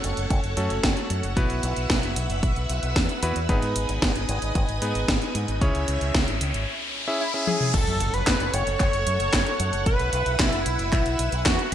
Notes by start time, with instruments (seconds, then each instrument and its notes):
Already playing: electric grand piano A3 C#4 F#4 A4, string machine A4 C#5 F#5 C#6
0.04 fingered electric bass F#1, closed hi-hat
0.17 fingered electric bass F#1, closed hi-hat
0.30 fingered electric bass F#1, kick, closed hi-hat
0.44 fingered electric bass F#1, closed hi-hat
0.57 fingered electric bass F#2, electric grand piano A3 C#4 F#4 A4, closed hi-hat
0.70 fingered electric bass F#1, closed hi-hat
0.83 fingered electric bass F#1, kick, snare, closed hi-hat
0.97 closed hi-hat
1.10 fingered electric bass F#2, closed hi-hat
1.23 fingered electric bass F#1, closed hi-hat
1.37 fingered electric bass B1, electric grand piano B3 E4 F#4 B4, string machine B4 E5 E6, kick, closed hi-hat
1.50 fingered electric bass B1, closed hi-hat
1.63 fingered electric bass B1, closed hi-hat
1.76 fingered electric bass B1, closed hi-hat
1.90 fingered electric bass B1, kick, snare, closed hi-hat
2.03 fingered electric bass F#1, closed hi-hat
2.16 fingered electric bass B1, closed hi-hat
2.30 fingered electric bass F#1, closed hi-hat
2.43 fingered electric bass B1, kick, closed hi-hat
2.56 fingered electric bass B1, closed hi-hat
2.70 fingered electric bass B1, closed hi-hat
2.83 fingered electric bass B1, closed hi-hat
2.96 fingered electric bass E2, kick, snare, closed hi-hat
3.09 closed hi-hat
3.23 fingered electric bass E2, electric grand piano B3 E4 F#4 B4, closed hi-hat
3.36 fingered electric bass E2, closed hi-hat
3.49 fingered electric bass G#1, electric grand piano B3 D#4 G#4 B4, string machine D#5 G#5 D#6, kick, closed hi-hat, riser
3.62 fingered electric bass G#2, closed hi-hat
3.76 fingered electric bass G#1, closed hi-hat
3.89 fingered electric bass G#1, closed hi-hat
4.02 fingered electric bass G#1, kick, snare, closed hi-hat
4.16 fingered electric bass G#1, closed hi-hat
4.29 fingered electric bass G#1, closed hi-hat
4.42 fingered electric bass G#1, closed hi-hat
4.55 fingered electric bass G#1, kick, closed hi-hat
4.69 fingered electric bass G#1, closed hi-hat
4.82 fingered electric bass G#2, electric grand piano B3 D#4 G#4 B4, closed hi-hat
4.95 fingered electric bass G#1, closed hi-hat
5.08 fingered electric bass G#1, kick, snare, closed hi-hat
5.22 closed hi-hat
5.35 fingered electric bass G#2, closed hi-hat
5.48 fingered electric bass G#1, closed hi-hat
5.61 fingered electric bass C#2, electric grand piano C#4 E4 G#4 C#5, string machine C#5 E5 E6, kick, closed hi-hat
5.75 fingered electric bass C#2, closed hi-hat
5.88 fingered electric bass C#2, closed hi-hat
6.01 fingered electric bass C#2, closed hi-hat
6.15 fingered electric bass C#2, kick, snare, closed hi-hat
6.28 fingered electric bass G#1, closed hi-hat
6.41 fingered electric bass C#2, closed hi-hat
6.54 fingered electric bass G#1, closed hi-hat
7.08 electric grand piano C#4 E4 G#4 E5
7.21 analog synth lead E4
7.34 electric grand piano C#4 E4 G#4 E5
7.47 analog synth lead G#4, high tom
7.61 mid tom
7.74 fingered electric bass F#1, string machine A4 C#5 F#5 C#6, analog synth lead A4, kick, closed hi-hat, crash, impact
7.87 fingered electric bass F#2, closed hi-hat
8.00 fingered electric bass F#1, closed hi-hat
8.14 fingered electric bass F#1, analog synth lead B4, closed hi-hat
8.27 fingered electric bass F#1, kick, snare, clap, closed hi-hat
8.40 fingered electric bass F#1, closed hi-hat
8.54 fingered electric bass F#1, analog synth lead C#5, closed hi-hat
8.67 fingered electric bass F#1, closed hi-hat
8.80 fingered electric bass F#1, analog synth lead C#5, kick, clap, closed hi-hat
8.93 fingered electric bass F#1, closed hi-hat
9.07 fingered electric bass F#2, closed hi-hat
9.20 fingered electric bass F#1, closed hi-hat
9.33 fingered electric bass F#1, kick, snare, clap, closed hi-hat
9.46 closed hi-hat
9.60 fingered electric bass F#2, closed hi-hat
9.73 fingered electric bass F#1, closed hi-hat
9.86 fingered electric bass B1, analog synth lead B4, string machine B4 E5 E6, kick, closed hi-hat
10.00 fingered electric bass B1, closed hi-hat
10.13 fingered electric bass B1, closed hi-hat
10.26 fingered electric bass B1, closed hi-hat
10.39 fingered electric bass B1, analog synth lead E4, kick, snare, clap, closed hi-hat
10.53 fingered electric bass F#1, closed hi-hat
10.66 fingered electric bass B1, closed hi-hat
10.79 fingered electric bass F#1, closed hi-hat
10.93 fingered electric bass B1, kick, clap, closed hi-hat
11.06 fingered electric bass B1, closed hi-hat
11.19 fingered electric bass B1, closed hi-hat
11.32 fingered electric bass B1, closed hi-hat
11.46 fingered electric bass E2, analog synth lead F#4, kick, snare, clap, closed hi-hat
11.59 closed hi-hat